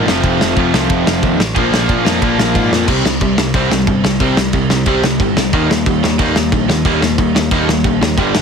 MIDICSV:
0, 0, Header, 1, 6, 480
1, 0, Start_track
1, 0, Key_signature, -3, "minor"
1, 0, Tempo, 330579
1, 351, Time_signature, 4, 2, 24, 8
1, 12223, End_track
2, 0, Start_track
2, 0, Title_t, "Overdriven electric guitar"
2, 0, Program_c, 0, 29
2, 8052, Note_on_c, 0, 63, 103
2, 8270, Note_off_c, 0, 63, 0
2, 8284, Note_on_c, 0, 58, 78
2, 8497, Note_off_c, 0, 58, 0
2, 8535, Note_on_c, 0, 58, 89
2, 8742, Note_off_c, 0, 58, 0
2, 8771, Note_on_c, 0, 58, 73
2, 8980, Note_off_c, 0, 58, 0
2, 9023, Note_on_c, 0, 63, 97
2, 9235, Note_off_c, 0, 63, 0
2, 9257, Note_on_c, 0, 58, 84
2, 9463, Note_off_c, 0, 58, 0
2, 9497, Note_on_c, 0, 58, 90
2, 9703, Note_off_c, 0, 58, 0
2, 9720, Note_on_c, 0, 58, 93
2, 9934, Note_off_c, 0, 58, 0
2, 9968, Note_on_c, 0, 63, 94
2, 10188, Note_off_c, 0, 63, 0
2, 10195, Note_on_c, 0, 58, 82
2, 10412, Note_off_c, 0, 58, 0
2, 10444, Note_on_c, 0, 58, 91
2, 10656, Note_off_c, 0, 58, 0
2, 10694, Note_on_c, 0, 58, 73
2, 10901, Note_off_c, 0, 58, 0
2, 10933, Note_on_c, 0, 63, 101
2, 11150, Note_off_c, 0, 63, 0
2, 11183, Note_on_c, 0, 58, 68
2, 11385, Note_off_c, 0, 58, 0
2, 11421, Note_on_c, 0, 58, 85
2, 11624, Note_off_c, 0, 58, 0
2, 11641, Note_on_c, 0, 58, 79
2, 11854, Note_off_c, 0, 58, 0
2, 12223, End_track
3, 0, Start_track
3, 0, Title_t, "Overdriven electric guitar"
3, 0, Program_c, 1, 29
3, 95, Note_on_c, 1, 41, 101
3, 105, Note_on_c, 1, 48, 96
3, 117, Note_on_c, 1, 53, 106
3, 126, Note_on_c, 1, 57, 113
3, 137, Note_on_c, 1, 60, 107
3, 141, Note_on_c, 1, 65, 101
3, 795, Note_off_c, 1, 41, 0
3, 806, Note_off_c, 1, 48, 0
3, 812, Note_on_c, 1, 41, 83
3, 823, Note_on_c, 1, 48, 69
3, 824, Note_off_c, 1, 57, 0
3, 830, Note_off_c, 1, 60, 0
3, 831, Note_off_c, 1, 53, 0
3, 836, Note_on_c, 1, 53, 82
3, 843, Note_on_c, 1, 57, 89
3, 855, Note_on_c, 1, 60, 83
3, 857, Note_off_c, 1, 65, 0
3, 862, Note_on_c, 1, 65, 75
3, 2008, Note_off_c, 1, 41, 0
3, 2013, Note_off_c, 1, 48, 0
3, 2020, Note_off_c, 1, 53, 0
3, 2023, Note_off_c, 1, 57, 0
3, 2029, Note_off_c, 1, 60, 0
3, 2033, Note_off_c, 1, 65, 0
3, 2246, Note_on_c, 1, 46, 100
3, 2260, Note_on_c, 1, 53, 96
3, 2277, Note_on_c, 1, 58, 116
3, 2286, Note_on_c, 1, 62, 96
3, 2295, Note_on_c, 1, 65, 112
3, 2951, Note_off_c, 1, 65, 0
3, 2965, Note_off_c, 1, 46, 0
3, 2967, Note_off_c, 1, 62, 0
3, 2968, Note_on_c, 1, 65, 83
3, 2972, Note_off_c, 1, 53, 0
3, 2975, Note_off_c, 1, 58, 0
3, 2985, Note_on_c, 1, 62, 86
3, 2993, Note_on_c, 1, 58, 77
3, 3007, Note_on_c, 1, 53, 82
3, 3016, Note_on_c, 1, 46, 66
3, 4166, Note_off_c, 1, 65, 0
3, 4168, Note_off_c, 1, 46, 0
3, 4174, Note_on_c, 1, 48, 94
3, 4175, Note_off_c, 1, 62, 0
3, 4179, Note_off_c, 1, 58, 0
3, 4182, Note_off_c, 1, 53, 0
3, 4188, Note_on_c, 1, 55, 91
3, 4196, Note_on_c, 1, 60, 105
3, 4409, Note_off_c, 1, 48, 0
3, 4412, Note_off_c, 1, 55, 0
3, 4420, Note_off_c, 1, 60, 0
3, 4425, Note_on_c, 1, 48, 75
3, 4430, Note_on_c, 1, 55, 86
3, 4646, Note_off_c, 1, 48, 0
3, 4648, Note_off_c, 1, 55, 0
3, 4670, Note_on_c, 1, 48, 81
3, 4671, Note_on_c, 1, 55, 81
3, 4888, Note_off_c, 1, 48, 0
3, 4888, Note_off_c, 1, 55, 0
3, 4907, Note_on_c, 1, 48, 66
3, 4914, Note_on_c, 1, 55, 85
3, 5127, Note_off_c, 1, 48, 0
3, 5130, Note_off_c, 1, 55, 0
3, 5146, Note_on_c, 1, 48, 105
3, 5160, Note_on_c, 1, 55, 109
3, 5171, Note_on_c, 1, 60, 119
3, 5364, Note_off_c, 1, 48, 0
3, 5371, Note_off_c, 1, 55, 0
3, 5381, Note_on_c, 1, 48, 64
3, 5389, Note_off_c, 1, 60, 0
3, 5389, Note_on_c, 1, 55, 77
3, 5604, Note_off_c, 1, 48, 0
3, 5608, Note_off_c, 1, 55, 0
3, 5621, Note_on_c, 1, 48, 74
3, 5626, Note_on_c, 1, 55, 93
3, 5844, Note_off_c, 1, 48, 0
3, 5846, Note_off_c, 1, 55, 0
3, 5867, Note_on_c, 1, 48, 85
3, 5880, Note_on_c, 1, 55, 82
3, 6087, Note_off_c, 1, 48, 0
3, 6094, Note_off_c, 1, 55, 0
3, 6109, Note_on_c, 1, 48, 96
3, 6117, Note_on_c, 1, 55, 105
3, 6131, Note_on_c, 1, 60, 95
3, 6332, Note_off_c, 1, 48, 0
3, 6342, Note_off_c, 1, 55, 0
3, 6349, Note_off_c, 1, 60, 0
3, 6349, Note_on_c, 1, 48, 70
3, 6357, Note_on_c, 1, 55, 88
3, 6568, Note_off_c, 1, 48, 0
3, 6572, Note_off_c, 1, 55, 0
3, 6593, Note_on_c, 1, 48, 75
3, 6597, Note_on_c, 1, 55, 83
3, 6810, Note_off_c, 1, 48, 0
3, 6813, Note_off_c, 1, 55, 0
3, 6828, Note_on_c, 1, 48, 76
3, 6837, Note_on_c, 1, 55, 78
3, 7048, Note_off_c, 1, 48, 0
3, 7052, Note_off_c, 1, 55, 0
3, 7069, Note_on_c, 1, 48, 104
3, 7077, Note_on_c, 1, 55, 102
3, 7087, Note_on_c, 1, 60, 123
3, 7290, Note_off_c, 1, 48, 0
3, 7297, Note_off_c, 1, 55, 0
3, 7307, Note_off_c, 1, 60, 0
3, 7307, Note_on_c, 1, 48, 63
3, 7315, Note_on_c, 1, 55, 73
3, 7528, Note_off_c, 1, 48, 0
3, 7532, Note_off_c, 1, 55, 0
3, 7556, Note_on_c, 1, 48, 81
3, 7563, Note_on_c, 1, 55, 88
3, 7772, Note_off_c, 1, 48, 0
3, 7776, Note_off_c, 1, 55, 0
3, 7801, Note_on_c, 1, 48, 78
3, 7804, Note_on_c, 1, 55, 89
3, 8015, Note_off_c, 1, 48, 0
3, 8016, Note_off_c, 1, 55, 0
3, 8038, Note_on_c, 1, 51, 104
3, 8045, Note_on_c, 1, 55, 93
3, 8051, Note_on_c, 1, 58, 106
3, 8263, Note_off_c, 1, 51, 0
3, 8266, Note_off_c, 1, 55, 0
3, 8270, Note_off_c, 1, 58, 0
3, 8279, Note_on_c, 1, 51, 80
3, 8281, Note_on_c, 1, 55, 84
3, 8494, Note_off_c, 1, 51, 0
3, 8495, Note_off_c, 1, 55, 0
3, 8511, Note_on_c, 1, 51, 74
3, 8519, Note_on_c, 1, 55, 93
3, 8730, Note_off_c, 1, 51, 0
3, 8734, Note_off_c, 1, 55, 0
3, 8751, Note_on_c, 1, 51, 63
3, 8755, Note_on_c, 1, 55, 90
3, 8962, Note_off_c, 1, 51, 0
3, 8972, Note_off_c, 1, 55, 0
3, 8979, Note_on_c, 1, 51, 103
3, 8988, Note_on_c, 1, 55, 107
3, 8999, Note_on_c, 1, 58, 112
3, 9207, Note_off_c, 1, 51, 0
3, 9218, Note_off_c, 1, 55, 0
3, 9223, Note_off_c, 1, 58, 0
3, 9224, Note_on_c, 1, 51, 66
3, 9235, Note_on_c, 1, 55, 69
3, 9446, Note_off_c, 1, 51, 0
3, 9452, Note_off_c, 1, 55, 0
3, 9469, Note_on_c, 1, 51, 80
3, 9475, Note_on_c, 1, 55, 83
3, 9689, Note_off_c, 1, 51, 0
3, 9692, Note_off_c, 1, 55, 0
3, 9706, Note_on_c, 1, 51, 82
3, 9711, Note_on_c, 1, 55, 82
3, 9927, Note_off_c, 1, 51, 0
3, 9929, Note_off_c, 1, 55, 0
3, 9946, Note_on_c, 1, 51, 99
3, 9956, Note_on_c, 1, 55, 98
3, 9963, Note_on_c, 1, 58, 108
3, 10161, Note_off_c, 1, 51, 0
3, 10167, Note_off_c, 1, 55, 0
3, 10178, Note_on_c, 1, 51, 83
3, 10184, Note_on_c, 1, 55, 78
3, 10185, Note_off_c, 1, 58, 0
3, 10403, Note_off_c, 1, 51, 0
3, 10406, Note_off_c, 1, 55, 0
3, 10425, Note_on_c, 1, 51, 78
3, 10428, Note_on_c, 1, 55, 88
3, 10647, Note_off_c, 1, 51, 0
3, 10648, Note_off_c, 1, 55, 0
3, 10666, Note_on_c, 1, 51, 66
3, 10674, Note_on_c, 1, 55, 70
3, 10887, Note_off_c, 1, 51, 0
3, 10891, Note_off_c, 1, 55, 0
3, 10909, Note_on_c, 1, 51, 90
3, 10922, Note_on_c, 1, 55, 113
3, 10930, Note_on_c, 1, 58, 112
3, 11138, Note_off_c, 1, 51, 0
3, 11141, Note_off_c, 1, 55, 0
3, 11148, Note_off_c, 1, 58, 0
3, 11153, Note_on_c, 1, 51, 67
3, 11158, Note_on_c, 1, 55, 74
3, 11370, Note_off_c, 1, 51, 0
3, 11373, Note_off_c, 1, 55, 0
3, 11390, Note_on_c, 1, 51, 83
3, 11398, Note_on_c, 1, 55, 83
3, 11608, Note_off_c, 1, 51, 0
3, 11612, Note_off_c, 1, 55, 0
3, 11637, Note_on_c, 1, 51, 76
3, 11647, Note_on_c, 1, 55, 93
3, 11852, Note_off_c, 1, 51, 0
3, 11857, Note_off_c, 1, 55, 0
3, 11862, Note_on_c, 1, 43, 101
3, 11872, Note_on_c, 1, 50, 96
3, 11882, Note_on_c, 1, 55, 96
3, 12094, Note_off_c, 1, 43, 0
3, 12098, Note_off_c, 1, 50, 0
3, 12103, Note_off_c, 1, 55, 0
3, 12114, Note_on_c, 1, 43, 74
3, 12115, Note_on_c, 1, 50, 82
3, 12223, Note_off_c, 1, 43, 0
3, 12223, Note_off_c, 1, 50, 0
3, 12223, End_track
4, 0, Start_track
4, 0, Title_t, "Distorted electric guitar"
4, 0, Program_c, 2, 30
4, 0, Note_on_c, 2, 53, 88
4, 146, Note_off_c, 2, 53, 0
4, 1051, Note_on_c, 2, 53, 82
4, 1084, Note_on_c, 2, 48, 75
4, 1109, Note_on_c, 2, 41, 77
4, 2007, Note_off_c, 2, 53, 0
4, 2024, Note_off_c, 2, 48, 0
4, 2036, Note_off_c, 2, 41, 0
4, 3209, Note_on_c, 2, 46, 81
4, 3245, Note_on_c, 2, 53, 81
4, 3271, Note_on_c, 2, 58, 88
4, 4167, Note_off_c, 2, 46, 0
4, 4185, Note_off_c, 2, 53, 0
4, 4198, Note_off_c, 2, 58, 0
4, 12223, End_track
5, 0, Start_track
5, 0, Title_t, "Picked electric bass"
5, 0, Program_c, 3, 34
5, 119, Note_on_c, 3, 29, 100
5, 331, Note_off_c, 3, 29, 0
5, 340, Note_on_c, 3, 29, 98
5, 566, Note_off_c, 3, 29, 0
5, 610, Note_on_c, 3, 29, 97
5, 813, Note_off_c, 3, 29, 0
5, 822, Note_on_c, 3, 41, 92
5, 1048, Note_off_c, 3, 41, 0
5, 1072, Note_on_c, 3, 36, 100
5, 1293, Note_off_c, 3, 36, 0
5, 1303, Note_on_c, 3, 29, 80
5, 1528, Note_off_c, 3, 29, 0
5, 1540, Note_on_c, 3, 29, 93
5, 1766, Note_off_c, 3, 29, 0
5, 1786, Note_on_c, 3, 39, 89
5, 2010, Note_off_c, 3, 39, 0
5, 2027, Note_on_c, 3, 33, 96
5, 2250, Note_off_c, 3, 33, 0
5, 2268, Note_on_c, 3, 34, 100
5, 2491, Note_off_c, 3, 34, 0
5, 2497, Note_on_c, 3, 34, 96
5, 2725, Note_off_c, 3, 34, 0
5, 2744, Note_on_c, 3, 46, 100
5, 2969, Note_off_c, 3, 46, 0
5, 2979, Note_on_c, 3, 41, 92
5, 3206, Note_off_c, 3, 41, 0
5, 3224, Note_on_c, 3, 34, 91
5, 3449, Note_off_c, 3, 34, 0
5, 3460, Note_on_c, 3, 34, 97
5, 3687, Note_off_c, 3, 34, 0
5, 3706, Note_on_c, 3, 44, 100
5, 3930, Note_off_c, 3, 44, 0
5, 3946, Note_on_c, 3, 41, 94
5, 4170, Note_off_c, 3, 41, 0
5, 4183, Note_on_c, 3, 36, 87
5, 4414, Note_off_c, 3, 36, 0
5, 4423, Note_on_c, 3, 36, 85
5, 4659, Note_off_c, 3, 36, 0
5, 4666, Note_on_c, 3, 36, 89
5, 4897, Note_off_c, 3, 36, 0
5, 4906, Note_on_c, 3, 36, 91
5, 5133, Note_off_c, 3, 36, 0
5, 5142, Note_on_c, 3, 36, 80
5, 5374, Note_off_c, 3, 36, 0
5, 5382, Note_on_c, 3, 36, 93
5, 5613, Note_off_c, 3, 36, 0
5, 5622, Note_on_c, 3, 31, 88
5, 5859, Note_off_c, 3, 31, 0
5, 5870, Note_on_c, 3, 36, 87
5, 6094, Note_off_c, 3, 36, 0
5, 6103, Note_on_c, 3, 36, 92
5, 6340, Note_off_c, 3, 36, 0
5, 6347, Note_on_c, 3, 36, 85
5, 6576, Note_off_c, 3, 36, 0
5, 6585, Note_on_c, 3, 36, 85
5, 6821, Note_off_c, 3, 36, 0
5, 6840, Note_on_c, 3, 36, 91
5, 7056, Note_off_c, 3, 36, 0
5, 7064, Note_on_c, 3, 36, 95
5, 7301, Note_off_c, 3, 36, 0
5, 7317, Note_on_c, 3, 36, 87
5, 7537, Note_off_c, 3, 36, 0
5, 7546, Note_on_c, 3, 31, 94
5, 7782, Note_off_c, 3, 31, 0
5, 7790, Note_on_c, 3, 36, 83
5, 8032, Note_off_c, 3, 36, 0
5, 8032, Note_on_c, 3, 39, 96
5, 8265, Note_off_c, 3, 39, 0
5, 8278, Note_on_c, 3, 39, 85
5, 8508, Note_off_c, 3, 39, 0
5, 8514, Note_on_c, 3, 39, 89
5, 8746, Note_off_c, 3, 39, 0
5, 8765, Note_on_c, 3, 39, 101
5, 8981, Note_off_c, 3, 39, 0
5, 8990, Note_on_c, 3, 39, 84
5, 9224, Note_off_c, 3, 39, 0
5, 9248, Note_on_c, 3, 39, 92
5, 9462, Note_off_c, 3, 39, 0
5, 9470, Note_on_c, 3, 34, 94
5, 9704, Note_off_c, 3, 34, 0
5, 9719, Note_on_c, 3, 39, 86
5, 9934, Note_off_c, 3, 39, 0
5, 9943, Note_on_c, 3, 39, 96
5, 10180, Note_off_c, 3, 39, 0
5, 10202, Note_on_c, 3, 39, 98
5, 10423, Note_off_c, 3, 39, 0
5, 10432, Note_on_c, 3, 39, 99
5, 10664, Note_off_c, 3, 39, 0
5, 10675, Note_on_c, 3, 39, 101
5, 10902, Note_off_c, 3, 39, 0
5, 10911, Note_on_c, 3, 39, 82
5, 11144, Note_off_c, 3, 39, 0
5, 11154, Note_on_c, 3, 39, 82
5, 11380, Note_off_c, 3, 39, 0
5, 11389, Note_on_c, 3, 34, 89
5, 11622, Note_off_c, 3, 34, 0
5, 11641, Note_on_c, 3, 39, 90
5, 11865, Note_off_c, 3, 39, 0
5, 11874, Note_on_c, 3, 31, 100
5, 12105, Note_off_c, 3, 31, 0
5, 12119, Note_on_c, 3, 31, 96
5, 12223, Note_off_c, 3, 31, 0
5, 12223, End_track
6, 0, Start_track
6, 0, Title_t, "Drums"
6, 119, Note_on_c, 9, 38, 109
6, 264, Note_off_c, 9, 38, 0
6, 342, Note_on_c, 9, 36, 109
6, 343, Note_on_c, 9, 51, 69
6, 487, Note_off_c, 9, 36, 0
6, 489, Note_off_c, 9, 51, 0
6, 597, Note_on_c, 9, 38, 107
6, 742, Note_off_c, 9, 38, 0
6, 820, Note_on_c, 9, 51, 62
6, 823, Note_on_c, 9, 36, 101
6, 965, Note_off_c, 9, 51, 0
6, 968, Note_off_c, 9, 36, 0
6, 1076, Note_on_c, 9, 38, 120
6, 1221, Note_off_c, 9, 38, 0
6, 1301, Note_on_c, 9, 51, 87
6, 1306, Note_on_c, 9, 36, 123
6, 1446, Note_off_c, 9, 51, 0
6, 1451, Note_off_c, 9, 36, 0
6, 1558, Note_on_c, 9, 38, 125
6, 1703, Note_off_c, 9, 38, 0
6, 1784, Note_on_c, 9, 51, 72
6, 1785, Note_on_c, 9, 36, 111
6, 1929, Note_off_c, 9, 51, 0
6, 1930, Note_off_c, 9, 36, 0
6, 2034, Note_on_c, 9, 38, 126
6, 2179, Note_off_c, 9, 38, 0
6, 2266, Note_on_c, 9, 36, 110
6, 2267, Note_on_c, 9, 51, 75
6, 2411, Note_off_c, 9, 36, 0
6, 2412, Note_off_c, 9, 51, 0
6, 2522, Note_on_c, 9, 38, 118
6, 2667, Note_off_c, 9, 38, 0
6, 2745, Note_on_c, 9, 36, 110
6, 2747, Note_on_c, 9, 51, 74
6, 2890, Note_off_c, 9, 36, 0
6, 2892, Note_off_c, 9, 51, 0
6, 2998, Note_on_c, 9, 38, 114
6, 3143, Note_off_c, 9, 38, 0
6, 3224, Note_on_c, 9, 36, 123
6, 3226, Note_on_c, 9, 51, 77
6, 3370, Note_off_c, 9, 36, 0
6, 3371, Note_off_c, 9, 51, 0
6, 3477, Note_on_c, 9, 38, 118
6, 3622, Note_off_c, 9, 38, 0
6, 3704, Note_on_c, 9, 36, 97
6, 3709, Note_on_c, 9, 51, 74
6, 3850, Note_off_c, 9, 36, 0
6, 3854, Note_off_c, 9, 51, 0
6, 3961, Note_on_c, 9, 38, 109
6, 4107, Note_off_c, 9, 38, 0
6, 4181, Note_on_c, 9, 36, 107
6, 4182, Note_on_c, 9, 49, 106
6, 4182, Note_on_c, 9, 57, 57
6, 4326, Note_off_c, 9, 36, 0
6, 4328, Note_off_c, 9, 49, 0
6, 4328, Note_off_c, 9, 57, 0
6, 4437, Note_on_c, 9, 38, 101
6, 4582, Note_off_c, 9, 38, 0
6, 4660, Note_on_c, 9, 57, 57
6, 4662, Note_on_c, 9, 36, 108
6, 4806, Note_off_c, 9, 57, 0
6, 4807, Note_off_c, 9, 36, 0
6, 4909, Note_on_c, 9, 38, 116
6, 5054, Note_off_c, 9, 38, 0
6, 5141, Note_on_c, 9, 36, 117
6, 5144, Note_on_c, 9, 57, 67
6, 5286, Note_off_c, 9, 36, 0
6, 5289, Note_off_c, 9, 57, 0
6, 5395, Note_on_c, 9, 38, 126
6, 5540, Note_off_c, 9, 38, 0
6, 5622, Note_on_c, 9, 57, 59
6, 5623, Note_on_c, 9, 36, 106
6, 5767, Note_off_c, 9, 57, 0
6, 5768, Note_off_c, 9, 36, 0
6, 5875, Note_on_c, 9, 38, 116
6, 6020, Note_off_c, 9, 38, 0
6, 6099, Note_on_c, 9, 57, 67
6, 6102, Note_on_c, 9, 36, 110
6, 6244, Note_off_c, 9, 57, 0
6, 6247, Note_off_c, 9, 36, 0
6, 6349, Note_on_c, 9, 38, 112
6, 6495, Note_off_c, 9, 38, 0
6, 6575, Note_on_c, 9, 57, 60
6, 6582, Note_on_c, 9, 36, 113
6, 6720, Note_off_c, 9, 57, 0
6, 6727, Note_off_c, 9, 36, 0
6, 6825, Note_on_c, 9, 38, 110
6, 6971, Note_off_c, 9, 38, 0
6, 7052, Note_on_c, 9, 57, 65
6, 7061, Note_on_c, 9, 36, 114
6, 7197, Note_off_c, 9, 57, 0
6, 7207, Note_off_c, 9, 36, 0
6, 7313, Note_on_c, 9, 38, 125
6, 7458, Note_off_c, 9, 38, 0
6, 7545, Note_on_c, 9, 57, 57
6, 7547, Note_on_c, 9, 36, 107
6, 7690, Note_off_c, 9, 57, 0
6, 7692, Note_off_c, 9, 36, 0
6, 7795, Note_on_c, 9, 38, 113
6, 7940, Note_off_c, 9, 38, 0
6, 8026, Note_on_c, 9, 57, 57
6, 8031, Note_on_c, 9, 36, 103
6, 8171, Note_off_c, 9, 57, 0
6, 8176, Note_off_c, 9, 36, 0
6, 8290, Note_on_c, 9, 38, 110
6, 8436, Note_off_c, 9, 38, 0
6, 8513, Note_on_c, 9, 36, 110
6, 8516, Note_on_c, 9, 57, 52
6, 8659, Note_off_c, 9, 36, 0
6, 8661, Note_off_c, 9, 57, 0
6, 8767, Note_on_c, 9, 38, 100
6, 8912, Note_off_c, 9, 38, 0
6, 8986, Note_on_c, 9, 57, 67
6, 8990, Note_on_c, 9, 36, 116
6, 9131, Note_off_c, 9, 57, 0
6, 9136, Note_off_c, 9, 36, 0
6, 9233, Note_on_c, 9, 38, 124
6, 9378, Note_off_c, 9, 38, 0
6, 9469, Note_on_c, 9, 57, 57
6, 9470, Note_on_c, 9, 36, 117
6, 9615, Note_off_c, 9, 36, 0
6, 9615, Note_off_c, 9, 57, 0
6, 9723, Note_on_c, 9, 38, 107
6, 9868, Note_off_c, 9, 38, 0
6, 9942, Note_on_c, 9, 57, 65
6, 9947, Note_on_c, 9, 36, 96
6, 10087, Note_off_c, 9, 57, 0
6, 10092, Note_off_c, 9, 36, 0
6, 10200, Note_on_c, 9, 38, 110
6, 10345, Note_off_c, 9, 38, 0
6, 10429, Note_on_c, 9, 36, 106
6, 10429, Note_on_c, 9, 57, 59
6, 10574, Note_off_c, 9, 36, 0
6, 10574, Note_off_c, 9, 57, 0
6, 10686, Note_on_c, 9, 38, 120
6, 10832, Note_off_c, 9, 38, 0
6, 10909, Note_on_c, 9, 36, 123
6, 10910, Note_on_c, 9, 57, 63
6, 11054, Note_off_c, 9, 36, 0
6, 11055, Note_off_c, 9, 57, 0
6, 11166, Note_on_c, 9, 38, 109
6, 11311, Note_off_c, 9, 38, 0
6, 11386, Note_on_c, 9, 57, 61
6, 11389, Note_on_c, 9, 36, 109
6, 11531, Note_off_c, 9, 57, 0
6, 11534, Note_off_c, 9, 36, 0
6, 11654, Note_on_c, 9, 38, 118
6, 11799, Note_off_c, 9, 38, 0
6, 11872, Note_on_c, 9, 36, 105
6, 11875, Note_on_c, 9, 57, 61
6, 12017, Note_off_c, 9, 36, 0
6, 12021, Note_off_c, 9, 57, 0
6, 12119, Note_on_c, 9, 38, 118
6, 12223, Note_off_c, 9, 38, 0
6, 12223, End_track
0, 0, End_of_file